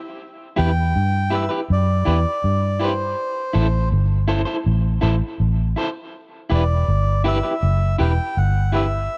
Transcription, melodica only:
0.58 G5
1.34 E5
1.72 D5
2.83 C5
6.54 D5
7.28 E5
8.01 G5
8.38 F#5
8.75 E5

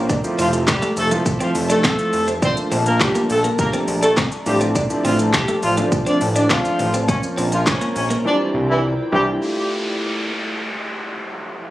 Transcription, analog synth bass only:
Already playing: A#1
0.39 F1
0.97 F1
1.55 F1
2.13 F1
2.72 A#1
3.30 A#1
3.88 A#1
4.46 A1
5.05 A1
5.63 A1
6.21 A1
6.79 A1
7.38 A#1
7.96 A#1
8.54 C2
9.12 C2

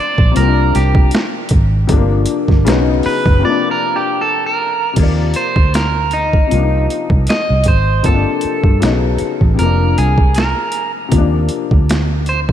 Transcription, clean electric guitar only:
0.00 D5
0.37 A#4
0.76 G4
3.06 B4
3.45 D5
3.71 A#4
3.96 G4
4.21 A4
4.46 A#4
5.36 C5
5.75 A#4
6.13 D#4
7.29 D#5
7.68 C5
8.06 A4
9.59 A#4
9.98 G#4
10.36 A#4
12.29 C5

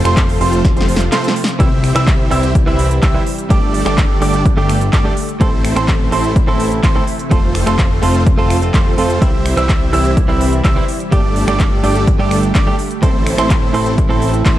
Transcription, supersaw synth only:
0.05 A3 C4 F4 A4 C5
0.41 A3 C4 F4 A4 C5
0.77 A3 C4 F4 A4 C5
1.12 A3 C4 F4 A4 C5
1.60 C4 E4 G4 C5 E5
1.96 C4 E4 G4 C5 E5
2.31 C4 E4 G4 C5 E5
2.67 C4 E4 G4 C5 E5
3.03 C4 E4 G4 C5 E5
3.50 A3 D4 G4 A4 D5
3.86 A3 D4 G4 A4 D5
4.21 A3 D4 G4 A4 D5
4.57 A3 D4 G4 A4 D5
4.93 A3 D4 G4 A4 D5
5.41 A3 C4 E4 A4 C5
5.76 A3 C4 E4 A4 C5
6.12 A3 C4 E4 A4 C5
6.48 A3 C4 E4 A4 C5
6.83 A3 C4 E4 A4 C5
7.31 A3 C4 F4 A4 C5
7.67 A3 C4 F4 A4 C5
8.03 A3 C4 F4 A4 C5
8.38 A3 C4 F4 A4 C5
8.74 A3 C4 F4 A4 C5
8.98 A3 C4 F4 A4 C5
9.22 C4 E4 G4 C5 E5
9.57 C4 E4 G4 C5 E5
9.93 C4 E4 G4 C5 E5
10.29 C4 E4 G4 C5 E5
10.65 C4 E4 G4 C5 E5
11.12 A3 D4 G4 A4 D5
11.48 A3 D4 G4 A4 D5
11.84 A3 D4 G4 A4 D5
12.19 A3 D4 G4 A4 D5
12.55 A3 D4 G4 A4 D5
13.03 A3 C4 E4 A4 C5
13.38 A3 C4 E4 A4 C5
13.74 A3 C4 E4 A4 C5
14.10 A3 C4 E4 A4 C5
14.46 A3 C4 E4 A4 C5

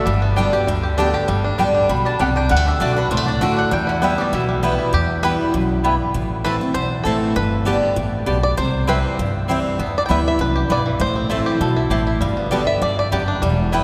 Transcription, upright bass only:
0.06 G1
0.67 D2
1.29 G1
1.59 A1
1.89 B1
2.20 C2
2.51 D2
2.81 B1
3.12 C2
3.41 D2
3.72 E2
4.33 B1
4.93 E2
5.54 B1
6.14 A1
6.75 B1
7.05 A1
7.36 G1
7.96 A1
8.27 B1
8.58 C2
9.19 G1
9.79 E2
10.09 D2
10.39 C2
10.69 B1
11.00 A1
11.61 B1
11.90 A1
12.21 G1
12.82 G1
13.13 F#1
13.42 E1

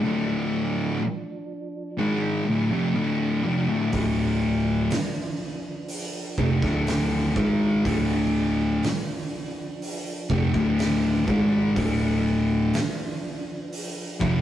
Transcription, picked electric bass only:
3.93 D1
6.38 F1
6.62 D1
7.36 G#1
7.85 D1
10.29 F1
10.54 D1
11.28 G#1
11.76 D1
14.21 F1

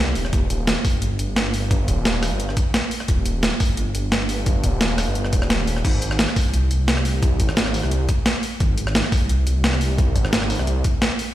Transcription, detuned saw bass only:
Already playing: C2
0.16 D#1
0.33 D#1
0.94 G1
1.19 G1
1.88 D#1
2.31 G1
3.08 D#1
3.69 G1
3.95 G1
4.64 D#1
5.07 G1
5.33 D#1
5.85 G#1
6.45 C2
6.71 C2
7.40 G#1
7.84 C2
8.60 G#1
9.22 C2
9.47 C2
10.16 G#1
10.59 C2

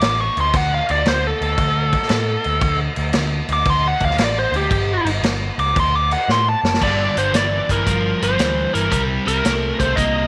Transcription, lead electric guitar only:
Already playing: D6
0.21 C#6
0.41 C6
0.56 F#5
0.74 F5
0.91 D5
1.08 C5
1.27 A4
3.53 D6
3.70 C6
3.88 F#5
4.05 F5
4.24 D5
4.39 C5
4.56 G4
5.60 D6
5.80 C6
5.96 D6
6.12 F#5
6.31 C6
6.49 A5
6.83 D5
7.18 C5
7.36 D5
7.71 A#4
8.24 C5
8.74 A#4
8.92 A#4
9.28 A#4
9.80 C5
9.96 D#5

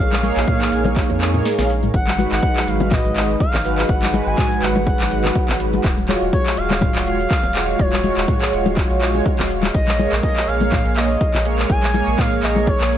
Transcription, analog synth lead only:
Already playing: F5
1.95 F#5
2.32 F#5
2.68 F5
2.92 D#5
3.41 F5
3.89 F#5
4.27 G#5
4.62 F#5
6.33 C#5
6.57 F5
7.07 F5
7.80 C#5
9.75 D#5
10.23 D#5
10.47 F5
10.96 D#5
11.70 G#5
12.19 F5
12.43 D#5
12.68 C#5

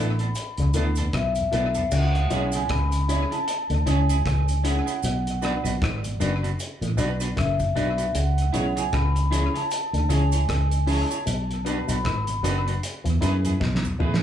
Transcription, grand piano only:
Already playing: D4 E4 A4 B4
0.73 D4 E4 A4 B4
1.51 D4 E4 A4 B4
2.30 C#4 E4 G#4 C#5
3.08 C#4 E4 G#4 C#5
3.86 C#4 E4 G#4 C#5
4.64 C#4 E4 G#4 C#5
5.41 D4 F#4 B4 D5
6.20 D4 F#4 B4 D5
6.97 D4 F#4 B4 D5
7.75 D4 F#4 B4 D5
8.53 C#4 E4 G#4 C#5
9.31 C#4 E4 G#4 C#5
10.09 C#4 E4 G#4 C#5
10.86 C#4 E4 G#4 C#5
11.65 B3 D4 F#4 B4
12.43 B3 D4 F#4 B4
13.21 B3 E4 G#4 B4
13.99 B3 E4 G#4 B4

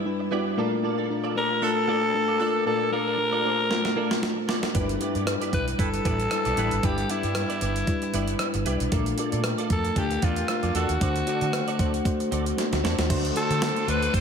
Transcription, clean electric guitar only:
0.19 muted clean electric guitar stroke
0.31 B3 E4 G4 D5
0.45 muted clean electric guitar stroke
0.57 A#3 F4 A4 D5
0.71 muted clean electric guitar stroke
0.83 A#3 F4 A4 D5
0.98 A#3 F4 A4 D5
1.10 muted clean electric guitar stroke
1.24 A#3 F4 A4 D5
1.35 A#3 F4 A4 D5
1.50 muted clean electric guitar stroke
1.62 muted clean electric guitar stroke
1.76 muted clean electric guitar stroke
1.87 A#3 F4 A4 D5
2.02 muted clean electric guitar stroke
2.14 muted clean electric guitar stroke
2.28 A#3 F4 A4 D5
2.39 A#3 F4 A4 D5
2.54 muted clean electric guitar stroke
2.66 A#3 F4 A4 D5
2.80 muted clean electric guitar stroke
2.92 A#3 F4 A4 D5
3.06 A#3 F4 A4 D5
3.18 muted clean electric guitar stroke
3.32 A#3 F4 A4 D5
3.44 A#3 F4 A4 D5
3.58 muted clean electric guitar stroke
3.85 muted clean electric guitar stroke
3.96 A#3 F4 A4 D5
4.11 muted clean electric guitar stroke
4.36 muted clean electric guitar stroke
4.48 A#3 F4 A4 D5
4.62 muted clean electric guitar stroke
4.74 B3 E4 G4 D5
4.88 muted clean electric guitar stroke
5.00 B3 E4 G4 D5
5.15 B3 E4 G4 D5
5.27 muted clean electric guitar stroke
5.41 B3 E4 G4 D5
5.53 B3 E4 G4 D5
5.67 muted clean electric guitar stroke
5.79 muted clean electric guitar stroke
5.93 muted clean electric guitar stroke
6.05 B3 E4 G4 D5
6.19 muted clean electric guitar stroke
6.31 muted clean electric guitar stroke
6.45 B3 E4 G4 D5
6.57 B3 E4 G4 D5
6.71 muted clean electric guitar stroke
6.83 B3 E4 G4 D5
6.97 muted clean electric guitar stroke
7.09 B3 E4 G4 D5
7.23 B3 E4 G4 D5
7.49 B3 E4 G4 D5
7.61 B3 E4 G4 D5
7.76 muted clean electric guitar stroke
7.88 muted clean electric guitar stroke
8.02 muted clean electric guitar stroke
8.13 B3 E4 G4 D5
8.28 muted clean electric guitar stroke
8.54 muted clean electric guitar stroke
8.65 B3 E4 G4 D5
8.80 muted clean electric guitar stroke
8.92 A#3 F4 A4 D5
9.06 muted clean electric guitar stroke
9.18 A#3 F4 A4 D5
9.31 A#3 F4 A4 D5
9.58 A#3 F4 A4 D5
9.70 A#3 F4 A4 D5
9.84 muted clean electric guitar stroke
9.96 muted clean electric guitar stroke
10.10 muted clean electric guitar stroke
10.22 A#3 F4 A4 D5
10.37 muted clean electric guitar stroke
10.49 muted clean electric guitar stroke
10.63 A#3 F4 A4 D5
10.74 A#3 F4 A4 D5
10.89 muted clean electric guitar stroke
11.01 C4 F#4 A4 D5
11.15 muted clean electric guitar stroke
11.27 C4 F#4 A4 D5
11.41 C4 F#4 A4 D5
11.53 muted clean electric guitar stroke
11.68 C4 F#4 A4 D5
11.79 C4 F#4 A4 D5
11.94 muted clean electric guitar stroke
12.05 muted clean electric guitar stroke
12.20 muted clean electric guitar stroke
12.31 C4 F#4 A4 D5
12.46 muted clean electric guitar stroke
12.72 muted clean electric guitar stroke
12.83 C4 F#4 A4 D5
12.98 muted clean electric guitar stroke
13.09 A3 D4 F#4 C5
13.35 A3 D4 F#4 C5
13.50 A3 D4 F#4 C5
13.61 muted clean electric guitar stroke
13.75 muted clean electric guitar stroke
13.87 A3 D4 F#4 C5
14.02 A3 D4 F#4 C5

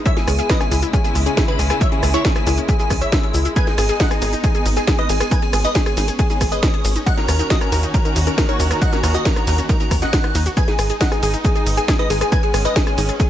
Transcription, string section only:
Already playing: G#3 B3
0.06 C#3 E4
1.81 A#3
3.56 B3 D#4
5.31 C#4
7.07 D#3 A#3 F#4
10.57 G#3 B3 D#4
12.32 C#4

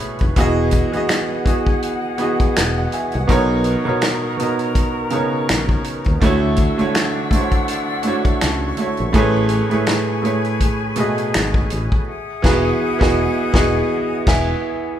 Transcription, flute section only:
Already playing: G#4 G#5 B5
0.37 G#4 F#5 D#6
3.28 A#4 A#5 C#6
6.21 D4 F#5 C#6 E6
9.14 G#4 G#5 B5
12.06 G#4 E5 F#5 D#6

